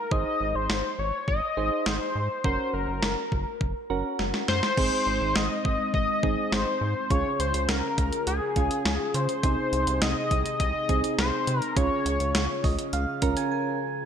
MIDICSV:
0, 0, Header, 1, 6, 480
1, 0, Start_track
1, 0, Tempo, 582524
1, 95, Time_signature, 4, 2, 24, 8
1, 11580, End_track
2, 0, Start_track
2, 0, Title_t, "Analog synth lead"
2, 0, Program_c, 0, 81
2, 0, Note_on_c, 0, 70, 98
2, 95, Note_on_c, 0, 75, 113
2, 107, Note_off_c, 0, 70, 0
2, 456, Note_on_c, 0, 72, 101
2, 468, Note_off_c, 0, 75, 0
2, 817, Note_on_c, 0, 73, 99
2, 829, Note_off_c, 0, 72, 0
2, 1049, Note_off_c, 0, 73, 0
2, 1053, Note_on_c, 0, 75, 108
2, 1534, Note_on_c, 0, 72, 95
2, 1546, Note_off_c, 0, 75, 0
2, 2010, Note_off_c, 0, 72, 0
2, 2015, Note_on_c, 0, 72, 98
2, 2254, Note_on_c, 0, 70, 84
2, 2266, Note_off_c, 0, 72, 0
2, 2974, Note_off_c, 0, 70, 0
2, 3695, Note_on_c, 0, 72, 103
2, 4414, Note_on_c, 0, 75, 107
2, 4426, Note_off_c, 0, 72, 0
2, 4890, Note_off_c, 0, 75, 0
2, 4895, Note_on_c, 0, 75, 108
2, 5376, Note_on_c, 0, 72, 100
2, 5388, Note_off_c, 0, 75, 0
2, 5856, Note_on_c, 0, 73, 106
2, 5868, Note_off_c, 0, 72, 0
2, 6090, Note_off_c, 0, 73, 0
2, 6095, Note_on_c, 0, 72, 93
2, 6335, Note_on_c, 0, 70, 98
2, 6348, Note_off_c, 0, 72, 0
2, 6810, Note_off_c, 0, 70, 0
2, 6815, Note_on_c, 0, 68, 96
2, 7534, Note_on_c, 0, 72, 97
2, 7546, Note_off_c, 0, 68, 0
2, 8254, Note_on_c, 0, 75, 100
2, 8266, Note_off_c, 0, 72, 0
2, 8728, Note_off_c, 0, 75, 0
2, 8733, Note_on_c, 0, 75, 104
2, 9181, Note_off_c, 0, 75, 0
2, 9217, Note_on_c, 0, 72, 92
2, 9563, Note_off_c, 0, 72, 0
2, 9563, Note_on_c, 0, 70, 92
2, 9695, Note_on_c, 0, 73, 92
2, 9707, Note_off_c, 0, 70, 0
2, 10415, Note_off_c, 0, 73, 0
2, 11580, End_track
3, 0, Start_track
3, 0, Title_t, "Synth keys"
3, 0, Program_c, 1, 88
3, 95, Note_on_c, 1, 63, 74
3, 95, Note_on_c, 1, 68, 68
3, 95, Note_on_c, 1, 72, 80
3, 722, Note_off_c, 1, 63, 0
3, 722, Note_off_c, 1, 68, 0
3, 722, Note_off_c, 1, 72, 0
3, 1295, Note_on_c, 1, 63, 70
3, 1295, Note_on_c, 1, 68, 66
3, 1295, Note_on_c, 1, 72, 78
3, 1766, Note_off_c, 1, 63, 0
3, 1766, Note_off_c, 1, 68, 0
3, 1766, Note_off_c, 1, 72, 0
3, 2015, Note_on_c, 1, 61, 75
3, 2015, Note_on_c, 1, 66, 70
3, 2015, Note_on_c, 1, 70, 84
3, 2642, Note_off_c, 1, 61, 0
3, 2642, Note_off_c, 1, 66, 0
3, 2642, Note_off_c, 1, 70, 0
3, 3214, Note_on_c, 1, 61, 83
3, 3214, Note_on_c, 1, 66, 74
3, 3214, Note_on_c, 1, 70, 91
3, 3685, Note_off_c, 1, 61, 0
3, 3685, Note_off_c, 1, 66, 0
3, 3685, Note_off_c, 1, 70, 0
3, 3935, Note_on_c, 1, 60, 74
3, 3935, Note_on_c, 1, 63, 70
3, 3935, Note_on_c, 1, 68, 82
3, 4562, Note_off_c, 1, 60, 0
3, 4562, Note_off_c, 1, 63, 0
3, 4562, Note_off_c, 1, 68, 0
3, 5135, Note_on_c, 1, 60, 70
3, 5135, Note_on_c, 1, 63, 62
3, 5135, Note_on_c, 1, 68, 76
3, 5606, Note_off_c, 1, 60, 0
3, 5606, Note_off_c, 1, 63, 0
3, 5606, Note_off_c, 1, 68, 0
3, 5855, Note_on_c, 1, 61, 76
3, 5855, Note_on_c, 1, 65, 69
3, 5855, Note_on_c, 1, 68, 82
3, 6482, Note_off_c, 1, 61, 0
3, 6482, Note_off_c, 1, 65, 0
3, 6483, Note_off_c, 1, 68, 0
3, 7054, Note_on_c, 1, 61, 68
3, 7054, Note_on_c, 1, 68, 78
3, 7055, Note_on_c, 1, 65, 64
3, 7525, Note_off_c, 1, 61, 0
3, 7525, Note_off_c, 1, 65, 0
3, 7525, Note_off_c, 1, 68, 0
3, 7775, Note_on_c, 1, 60, 74
3, 7775, Note_on_c, 1, 63, 69
3, 7775, Note_on_c, 1, 68, 83
3, 8402, Note_off_c, 1, 60, 0
3, 8402, Note_off_c, 1, 63, 0
3, 8402, Note_off_c, 1, 68, 0
3, 8976, Note_on_c, 1, 60, 70
3, 8976, Note_on_c, 1, 63, 64
3, 8976, Note_on_c, 1, 68, 79
3, 9446, Note_off_c, 1, 60, 0
3, 9446, Note_off_c, 1, 63, 0
3, 9446, Note_off_c, 1, 68, 0
3, 9693, Note_on_c, 1, 61, 75
3, 9693, Note_on_c, 1, 68, 86
3, 9694, Note_on_c, 1, 65, 70
3, 10322, Note_off_c, 1, 61, 0
3, 10322, Note_off_c, 1, 65, 0
3, 10322, Note_off_c, 1, 68, 0
3, 10415, Note_on_c, 1, 75, 72
3, 10638, Note_off_c, 1, 75, 0
3, 10655, Note_on_c, 1, 77, 78
3, 10895, Note_on_c, 1, 61, 87
3, 10895, Note_on_c, 1, 65, 82
3, 10896, Note_on_c, 1, 70, 94
3, 10989, Note_off_c, 1, 77, 0
3, 11016, Note_on_c, 1, 80, 73
3, 11127, Note_off_c, 1, 80, 0
3, 11135, Note_on_c, 1, 80, 76
3, 11366, Note_off_c, 1, 61, 0
3, 11366, Note_off_c, 1, 65, 0
3, 11366, Note_off_c, 1, 70, 0
3, 11580, Note_off_c, 1, 80, 0
3, 11580, End_track
4, 0, Start_track
4, 0, Title_t, "Analog synth pad"
4, 0, Program_c, 2, 89
4, 3934, Note_on_c, 2, 63, 86
4, 3935, Note_on_c, 2, 56, 75
4, 3936, Note_on_c, 2, 60, 72
4, 5835, Note_off_c, 2, 63, 0
4, 5836, Note_off_c, 2, 56, 0
4, 5836, Note_off_c, 2, 60, 0
4, 5855, Note_on_c, 2, 68, 86
4, 5856, Note_on_c, 2, 49, 75
4, 5856, Note_on_c, 2, 61, 70
4, 5856, Note_on_c, 2, 65, 69
4, 7756, Note_off_c, 2, 49, 0
4, 7756, Note_off_c, 2, 61, 0
4, 7756, Note_off_c, 2, 65, 0
4, 7774, Note_on_c, 2, 48, 78
4, 7775, Note_on_c, 2, 63, 69
4, 9675, Note_off_c, 2, 48, 0
4, 9675, Note_off_c, 2, 63, 0
4, 9696, Note_on_c, 2, 49, 79
4, 9697, Note_on_c, 2, 61, 72
4, 11580, Note_off_c, 2, 49, 0
4, 11580, Note_off_c, 2, 61, 0
4, 11580, Note_off_c, 2, 68, 0
4, 11580, End_track
5, 0, Start_track
5, 0, Title_t, "Analog synth bass"
5, 0, Program_c, 3, 38
5, 95, Note_on_c, 3, 32, 106
5, 203, Note_off_c, 3, 32, 0
5, 335, Note_on_c, 3, 32, 101
5, 443, Note_off_c, 3, 32, 0
5, 454, Note_on_c, 3, 32, 98
5, 563, Note_off_c, 3, 32, 0
5, 574, Note_on_c, 3, 32, 104
5, 683, Note_off_c, 3, 32, 0
5, 814, Note_on_c, 3, 32, 99
5, 923, Note_off_c, 3, 32, 0
5, 1053, Note_on_c, 3, 32, 97
5, 1162, Note_off_c, 3, 32, 0
5, 1294, Note_on_c, 3, 32, 99
5, 1403, Note_off_c, 3, 32, 0
5, 1535, Note_on_c, 3, 32, 95
5, 1643, Note_off_c, 3, 32, 0
5, 1775, Note_on_c, 3, 44, 100
5, 1883, Note_off_c, 3, 44, 0
5, 2014, Note_on_c, 3, 30, 101
5, 2123, Note_off_c, 3, 30, 0
5, 2255, Note_on_c, 3, 30, 99
5, 2363, Note_off_c, 3, 30, 0
5, 2375, Note_on_c, 3, 30, 97
5, 2483, Note_off_c, 3, 30, 0
5, 2494, Note_on_c, 3, 30, 99
5, 2603, Note_off_c, 3, 30, 0
5, 2736, Note_on_c, 3, 30, 101
5, 2844, Note_off_c, 3, 30, 0
5, 2973, Note_on_c, 3, 30, 96
5, 3082, Note_off_c, 3, 30, 0
5, 3214, Note_on_c, 3, 30, 97
5, 3323, Note_off_c, 3, 30, 0
5, 3454, Note_on_c, 3, 30, 97
5, 3563, Note_off_c, 3, 30, 0
5, 3695, Note_on_c, 3, 42, 95
5, 3803, Note_off_c, 3, 42, 0
5, 3935, Note_on_c, 3, 32, 106
5, 4043, Note_off_c, 3, 32, 0
5, 4174, Note_on_c, 3, 32, 101
5, 4283, Note_off_c, 3, 32, 0
5, 4294, Note_on_c, 3, 32, 98
5, 4403, Note_off_c, 3, 32, 0
5, 4414, Note_on_c, 3, 32, 102
5, 4523, Note_off_c, 3, 32, 0
5, 4656, Note_on_c, 3, 32, 101
5, 4764, Note_off_c, 3, 32, 0
5, 4894, Note_on_c, 3, 32, 98
5, 5003, Note_off_c, 3, 32, 0
5, 5135, Note_on_c, 3, 32, 106
5, 5243, Note_off_c, 3, 32, 0
5, 5373, Note_on_c, 3, 32, 95
5, 5482, Note_off_c, 3, 32, 0
5, 5613, Note_on_c, 3, 44, 100
5, 5722, Note_off_c, 3, 44, 0
5, 5855, Note_on_c, 3, 37, 108
5, 5963, Note_off_c, 3, 37, 0
5, 6093, Note_on_c, 3, 37, 100
5, 6202, Note_off_c, 3, 37, 0
5, 6214, Note_on_c, 3, 37, 94
5, 6323, Note_off_c, 3, 37, 0
5, 6335, Note_on_c, 3, 37, 96
5, 6443, Note_off_c, 3, 37, 0
5, 6575, Note_on_c, 3, 37, 102
5, 6683, Note_off_c, 3, 37, 0
5, 6815, Note_on_c, 3, 37, 107
5, 6923, Note_off_c, 3, 37, 0
5, 7055, Note_on_c, 3, 37, 100
5, 7163, Note_off_c, 3, 37, 0
5, 7295, Note_on_c, 3, 37, 102
5, 7403, Note_off_c, 3, 37, 0
5, 7534, Note_on_c, 3, 49, 104
5, 7643, Note_off_c, 3, 49, 0
5, 7774, Note_on_c, 3, 36, 102
5, 7883, Note_off_c, 3, 36, 0
5, 8014, Note_on_c, 3, 36, 101
5, 8123, Note_off_c, 3, 36, 0
5, 8134, Note_on_c, 3, 36, 102
5, 8243, Note_off_c, 3, 36, 0
5, 8253, Note_on_c, 3, 36, 103
5, 8362, Note_off_c, 3, 36, 0
5, 8496, Note_on_c, 3, 36, 99
5, 8604, Note_off_c, 3, 36, 0
5, 8734, Note_on_c, 3, 36, 105
5, 8843, Note_off_c, 3, 36, 0
5, 8975, Note_on_c, 3, 36, 98
5, 9083, Note_off_c, 3, 36, 0
5, 9215, Note_on_c, 3, 36, 101
5, 9323, Note_off_c, 3, 36, 0
5, 9454, Note_on_c, 3, 48, 103
5, 9563, Note_off_c, 3, 48, 0
5, 9695, Note_on_c, 3, 37, 100
5, 9803, Note_off_c, 3, 37, 0
5, 9934, Note_on_c, 3, 37, 103
5, 10043, Note_off_c, 3, 37, 0
5, 10055, Note_on_c, 3, 37, 95
5, 10163, Note_off_c, 3, 37, 0
5, 10174, Note_on_c, 3, 37, 101
5, 10283, Note_off_c, 3, 37, 0
5, 10416, Note_on_c, 3, 37, 97
5, 10524, Note_off_c, 3, 37, 0
5, 10654, Note_on_c, 3, 37, 103
5, 10763, Note_off_c, 3, 37, 0
5, 10895, Note_on_c, 3, 37, 97
5, 11003, Note_off_c, 3, 37, 0
5, 11580, End_track
6, 0, Start_track
6, 0, Title_t, "Drums"
6, 95, Note_on_c, 9, 36, 116
6, 177, Note_off_c, 9, 36, 0
6, 574, Note_on_c, 9, 38, 117
6, 656, Note_off_c, 9, 38, 0
6, 1053, Note_on_c, 9, 36, 92
6, 1136, Note_off_c, 9, 36, 0
6, 1534, Note_on_c, 9, 38, 108
6, 1617, Note_off_c, 9, 38, 0
6, 2014, Note_on_c, 9, 36, 112
6, 2096, Note_off_c, 9, 36, 0
6, 2493, Note_on_c, 9, 38, 116
6, 2575, Note_off_c, 9, 38, 0
6, 2735, Note_on_c, 9, 36, 90
6, 2818, Note_off_c, 9, 36, 0
6, 2973, Note_on_c, 9, 36, 87
6, 3056, Note_off_c, 9, 36, 0
6, 3454, Note_on_c, 9, 38, 55
6, 3537, Note_off_c, 9, 38, 0
6, 3575, Note_on_c, 9, 38, 60
6, 3657, Note_off_c, 9, 38, 0
6, 3694, Note_on_c, 9, 38, 83
6, 3777, Note_off_c, 9, 38, 0
6, 3814, Note_on_c, 9, 38, 82
6, 3897, Note_off_c, 9, 38, 0
6, 3934, Note_on_c, 9, 36, 110
6, 3934, Note_on_c, 9, 49, 95
6, 4017, Note_off_c, 9, 36, 0
6, 4017, Note_off_c, 9, 49, 0
6, 4414, Note_on_c, 9, 38, 113
6, 4496, Note_off_c, 9, 38, 0
6, 4656, Note_on_c, 9, 36, 91
6, 4738, Note_off_c, 9, 36, 0
6, 4894, Note_on_c, 9, 36, 91
6, 4976, Note_off_c, 9, 36, 0
6, 5135, Note_on_c, 9, 36, 86
6, 5217, Note_off_c, 9, 36, 0
6, 5376, Note_on_c, 9, 38, 109
6, 5459, Note_off_c, 9, 38, 0
6, 5855, Note_on_c, 9, 36, 116
6, 5856, Note_on_c, 9, 42, 75
6, 5937, Note_off_c, 9, 36, 0
6, 5938, Note_off_c, 9, 42, 0
6, 6096, Note_on_c, 9, 42, 66
6, 6178, Note_off_c, 9, 42, 0
6, 6214, Note_on_c, 9, 42, 60
6, 6296, Note_off_c, 9, 42, 0
6, 6334, Note_on_c, 9, 38, 114
6, 6335, Note_on_c, 9, 42, 70
6, 6417, Note_off_c, 9, 38, 0
6, 6417, Note_off_c, 9, 42, 0
6, 6575, Note_on_c, 9, 36, 92
6, 6575, Note_on_c, 9, 42, 74
6, 6658, Note_off_c, 9, 36, 0
6, 6658, Note_off_c, 9, 42, 0
6, 6695, Note_on_c, 9, 42, 55
6, 6778, Note_off_c, 9, 42, 0
6, 6814, Note_on_c, 9, 42, 73
6, 6896, Note_off_c, 9, 42, 0
6, 7054, Note_on_c, 9, 42, 71
6, 7055, Note_on_c, 9, 36, 87
6, 7136, Note_off_c, 9, 42, 0
6, 7137, Note_off_c, 9, 36, 0
6, 7175, Note_on_c, 9, 42, 56
6, 7258, Note_off_c, 9, 42, 0
6, 7296, Note_on_c, 9, 38, 110
6, 7297, Note_on_c, 9, 42, 63
6, 7379, Note_off_c, 9, 38, 0
6, 7380, Note_off_c, 9, 42, 0
6, 7535, Note_on_c, 9, 42, 78
6, 7617, Note_off_c, 9, 42, 0
6, 7653, Note_on_c, 9, 42, 48
6, 7736, Note_off_c, 9, 42, 0
6, 7774, Note_on_c, 9, 36, 114
6, 7775, Note_on_c, 9, 42, 75
6, 7857, Note_off_c, 9, 36, 0
6, 7857, Note_off_c, 9, 42, 0
6, 8016, Note_on_c, 9, 42, 65
6, 8099, Note_off_c, 9, 42, 0
6, 8134, Note_on_c, 9, 42, 59
6, 8217, Note_off_c, 9, 42, 0
6, 8254, Note_on_c, 9, 38, 118
6, 8255, Note_on_c, 9, 42, 68
6, 8336, Note_off_c, 9, 38, 0
6, 8337, Note_off_c, 9, 42, 0
6, 8496, Note_on_c, 9, 36, 91
6, 8496, Note_on_c, 9, 42, 72
6, 8578, Note_off_c, 9, 36, 0
6, 8578, Note_off_c, 9, 42, 0
6, 8616, Note_on_c, 9, 42, 55
6, 8698, Note_off_c, 9, 42, 0
6, 8734, Note_on_c, 9, 36, 90
6, 8734, Note_on_c, 9, 42, 72
6, 8816, Note_off_c, 9, 36, 0
6, 8817, Note_off_c, 9, 42, 0
6, 8974, Note_on_c, 9, 42, 71
6, 8975, Note_on_c, 9, 36, 88
6, 9057, Note_off_c, 9, 42, 0
6, 9058, Note_off_c, 9, 36, 0
6, 9096, Note_on_c, 9, 42, 57
6, 9179, Note_off_c, 9, 42, 0
6, 9217, Note_on_c, 9, 38, 110
6, 9218, Note_on_c, 9, 42, 65
6, 9299, Note_off_c, 9, 38, 0
6, 9300, Note_off_c, 9, 42, 0
6, 9454, Note_on_c, 9, 42, 76
6, 9537, Note_off_c, 9, 42, 0
6, 9574, Note_on_c, 9, 42, 50
6, 9657, Note_off_c, 9, 42, 0
6, 9695, Note_on_c, 9, 36, 116
6, 9697, Note_on_c, 9, 42, 77
6, 9777, Note_off_c, 9, 36, 0
6, 9779, Note_off_c, 9, 42, 0
6, 9937, Note_on_c, 9, 42, 68
6, 10019, Note_off_c, 9, 42, 0
6, 10054, Note_on_c, 9, 42, 59
6, 10137, Note_off_c, 9, 42, 0
6, 10175, Note_on_c, 9, 38, 120
6, 10175, Note_on_c, 9, 42, 71
6, 10257, Note_off_c, 9, 38, 0
6, 10258, Note_off_c, 9, 42, 0
6, 10416, Note_on_c, 9, 36, 95
6, 10416, Note_on_c, 9, 46, 53
6, 10498, Note_off_c, 9, 36, 0
6, 10498, Note_off_c, 9, 46, 0
6, 10535, Note_on_c, 9, 42, 57
6, 10618, Note_off_c, 9, 42, 0
6, 10654, Note_on_c, 9, 42, 73
6, 10736, Note_off_c, 9, 42, 0
6, 10892, Note_on_c, 9, 42, 74
6, 10895, Note_on_c, 9, 36, 88
6, 10975, Note_off_c, 9, 42, 0
6, 10977, Note_off_c, 9, 36, 0
6, 11014, Note_on_c, 9, 42, 57
6, 11096, Note_off_c, 9, 42, 0
6, 11580, End_track
0, 0, End_of_file